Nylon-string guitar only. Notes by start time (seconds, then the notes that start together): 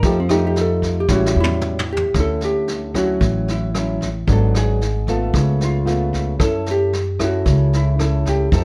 0.04 F3 A3 D#4 G4
0.30 A3 D#4 G4
1.10 A2 G3 C#4 E4
2.15 D3 C#4 E4
2.95 F#3 C#4 E4
3.22 A2
3.75 F#3 C#4 E4
4.28 G#2 F#3 B3 D4
5.08 A3 B3 F4
5.34 C#3
5.85 A3 B3 F4
6.39 C#4 E4 A4
7.19 C#4 E4 A4
7.46 C#3
8.00 C#4 E4 A4
8.52 F3 C4 D#4 A4